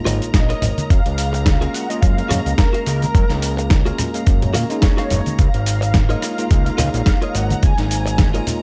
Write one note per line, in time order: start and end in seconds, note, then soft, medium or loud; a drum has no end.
0.00 0.89 G#3 medium
0.00 0.89 A#3 medium
0.00 0.89 D#4 medium
0.00 0.90 F4 medium
0.00 5.38 A#5 medium
0.05 0.22 G#1 loud
0.05 0.28 F4 loud
0.05 0.28 A#4 loud
0.05 0.28 C#5 loud
0.05 0.28 D#5 loud
0.05 open hi-hat loud
0.05 high conga medium
0.05 cabasa medium
0.22 0.32 A#1 soft
0.22 closed hi-hat soft
0.22 cabasa soft
0.34 0.54 A#1 medium
0.34 0.91 D#5 loud
0.34 kick loud
0.34 snare loud
0.34 closed hi-hat medium
0.34 cabasa soft
0.49 0.90 F4 medium
0.49 0.90 A#4 medium
0.49 0.90 C#5 medium
0.49 0.91 D#5 loud
0.49 cross-stick medium
0.49 closed hi-hat soft
0.62 0.73 G#1 medium
0.62 open hi-hat loud
0.62 low conga medium
0.62 cabasa medium
0.78 closed hi-hat soft
0.78 high conga loud
0.78 cabasa soft
0.90 1.01 F#2 loud
0.90 1.75 F5 loud
0.90 kick loud
0.90 closed hi-hat medium
0.90 cabasa soft
1.06 1.68 C#2 medium
1.06 closed hi-hat soft
1.18 open hi-hat loud
1.18 cabasa medium
1.33 muted clean electric guitar stroke loud
1.33 closed hi-hat soft
1.33 cabasa soft
1.45 muted clean electric guitar stroke soft
1.45 kick loud
1.45 snare loud
1.45 closed hi-hat medium
1.45 high conga loud
1.45 cabasa soft
1.61 1.85 G#3 medium
1.61 1.85 A#3 medium
1.61 1.85 C#4 medium
1.61 1.86 F4 medium
1.61 1.96 F#4 medium
1.61 1.96 G#4 medium
1.61 1.96 A#4 medium
1.61 1.97 F5 loud
1.61 closed hi-hat soft
1.74 1.89 F#5 loud
1.74 open hi-hat loud
1.74 cabasa medium
1.89 2.14 G#3 medium
1.89 2.14 A#3 medium
1.89 2.14 C#4 medium
1.89 2.15 F4 loud
1.89 1.95 D#5 loud
1.89 closed hi-hat soft
1.89 cabasa soft
2.01 2.22 F#2 medium
2.01 2.54 F5 loud
2.01 kick loud
2.01 closed hi-hat medium
2.01 cabasa soft
2.17 3.82 G#3 medium
2.17 3.82 A#3 medium
2.17 3.82 C#4 medium
2.17 3.83 F5 medium
2.17 closed hi-hat soft
2.29 2.41 F#2 medium
2.29 2.52 F#4 loud
2.29 2.52 G#4 loud
2.29 2.52 A#4 loud
2.29 2.53 F5 loud
2.29 cross-stick medium
2.29 open hi-hat loud
2.29 high conga medium
2.29 low conga medium
2.29 cabasa medium
2.46 2.55 C#2 loud
2.46 closed hi-hat soft
2.46 cabasa soft
2.58 2.84 A#4 loud
2.58 kick loud
2.58 snare loud
2.58 closed hi-hat medium
2.58 cabasa soft
2.73 3.14 F#4 medium
2.73 3.14 G#4 medium
2.73 3.15 A#4 medium
2.73 3.15 F5 loud
2.73 closed hi-hat soft
2.86 3.07 C#2 medium
2.86 3.95 A#4 medium
2.86 open hi-hat medium
2.86 cabasa medium
3.02 closed hi-hat soft
3.02 high conga medium
3.02 cabasa soft
3.15 3.25 F#2 medium
3.15 kick loud
3.15 closed hi-hat medium
3.15 cabasa soft
3.30 3.92 C#2 medium
3.30 snare soft
3.30 closed hi-hat soft
3.42 open hi-hat loud
3.42 cabasa medium
3.57 muted clean electric guitar stroke loud
3.57 closed hi-hat soft
3.57 cabasa soft
3.70 muted clean electric guitar stroke soft
3.70 kick loud
3.70 snare loud
3.70 closed hi-hat medium
3.70 high conga medium
3.70 cabasa soft
3.85 4.10 G#3 medium
3.85 4.10 A#3 medium
3.85 4.11 C#4 medium
3.85 4.11 F4 medium
3.85 4.20 F#4 medium
3.85 4.20 G#4 medium
3.85 4.21 A#4 medium
3.85 4.21 F5 loud
3.85 closed hi-hat soft
3.98 cross-stick medium
3.98 open hi-hat loud
3.98 low conga medium
3.98 cabasa medium
4.14 4.67 G#3 medium
4.14 4.67 A#3 medium
4.14 4.67 C#4 medium
4.14 4.68 F5 medium
4.14 closed hi-hat soft
4.14 cabasa soft
4.27 4.56 F#2 medium
4.27 kick loud
4.27 closed hi-hat medium
4.27 cabasa soft
4.42 closed hi-hat soft
4.42 low conga medium
4.54 4.65 A#2 medium
4.54 4.76 F#4 loud
4.54 4.76 G#4 loud
4.54 4.77 A#4 loud
4.54 4.77 F5 loud
4.54 open hi-hat loud
4.54 high conga medium
4.54 cabasa medium
4.69 5.37 G#3 medium
4.69 5.37 A#3 medium
4.69 5.37 C#4 medium
4.69 5.38 D#4 medium
4.69 closed hi-hat soft
4.69 cabasa soft
4.82 5.40 C#5 medium
4.82 kick loud
4.82 snare loud
4.82 closed hi-hat medium
4.82 cabasa soft
4.97 5.38 F#4 medium
4.97 5.38 G#4 medium
4.97 5.39 A#4 medium
4.97 5.39 F5 loud
4.97 cross-stick medium
4.97 closed hi-hat soft
5.10 5.21 F#1 loud
5.10 open hi-hat medium
5.10 low conga medium
5.10 cabasa medium
5.26 closed hi-hat soft
5.26 high conga medium
5.26 cabasa soft
5.38 5.49 C#2 loud
5.38 6.22 F5 loud
5.38 8.62 A#5 medium
5.38 kick loud
5.38 closed hi-hat medium
5.38 cabasa soft
5.54 6.16 G#1 loud
5.54 closed hi-hat soft
5.66 open hi-hat loud
5.66 cabasa medium
5.81 muted clean electric guitar stroke loud
5.81 closed hi-hat soft
5.81 cabasa soft
5.94 muted clean electric guitar stroke soft
5.94 kick loud
5.94 snare loud
5.94 closed hi-hat medium
5.94 high conga loud
5.94 cabasa soft
6.09 6.34 G#3 medium
6.09 6.34 A#3 medium
6.09 6.34 D#4 medium
6.09 6.44 F4 medium
6.09 6.34 F4 medium
6.09 6.44 A#4 medium
6.09 6.45 C#5 medium
6.09 6.45 D#5 loud
6.09 closed hi-hat soft
6.22 7.37 F5 loud
6.22 cross-stick medium
6.22 open hi-hat medium
6.22 cabasa medium
6.38 6.63 G#3 medium
6.38 6.63 A#3 medium
6.38 6.63 D#4 medium
6.38 6.63 F4 loud
6.38 closed hi-hat soft
6.38 cabasa soft
6.51 6.71 C#2 medium
6.51 kick loud
6.51 closed hi-hat medium
6.51 cabasa soft
6.65 8.30 G#3 medium
6.65 8.31 A#3 medium
6.65 8.31 D#4 medium
6.65 8.31 F4 medium
6.65 closed hi-hat soft
6.78 6.89 C#2 medium
6.78 7.00 F4 loud
6.78 7.00 A#4 loud
6.78 7.01 C#5 loud
6.78 7.01 D#5 loud
6.78 cross-stick medium
6.78 open hi-hat loud
6.78 high conga medium
6.78 low conga medium
6.78 cabasa medium
6.94 7.03 A#1 medium
6.94 closed hi-hat soft
6.94 cabasa soft
7.06 kick loud
7.06 snare loud
7.06 closed hi-hat medium
7.06 cabasa soft
7.22 7.63 F4 medium
7.22 7.63 A#4 medium
7.22 7.63 C#5 medium
7.22 7.63 D#5 loud
7.22 closed hi-hat soft
7.35 7.55 G#1 loud
7.35 7.65 F#5 loud
7.35 open hi-hat medium
7.35 cabasa medium
7.50 closed hi-hat soft
7.50 high conga medium
7.50 cabasa soft
7.63 7.74 C#2 loud
7.63 8.62 G#5 loud
7.63 kick loud
7.63 closed hi-hat medium
7.63 cabasa soft
7.78 8.41 G#1 medium
7.78 snare soft
7.78 closed hi-hat soft
7.91 open hi-hat loud
7.91 cabasa medium
8.06 muted clean electric guitar stroke loud
8.06 closed hi-hat soft
8.06 cabasa soft
8.18 muted clean electric guitar stroke soft
8.18 kick loud
8.18 snare loud
8.18 closed hi-hat medium
8.18 high conga medium
8.18 cabasa soft
8.34 8.59 G#3 medium
8.34 8.59 A#3 medium
8.34 8.59 D#4 medium
8.34 8.62 F4 medium
8.34 8.59 F4 medium
8.34 8.62 A#4 medium
8.34 8.62 C#5 medium
8.34 8.62 D#5 loud
8.34 closed hi-hat soft
8.47 open hi-hat medium
8.47 low conga medium
8.47 cabasa medium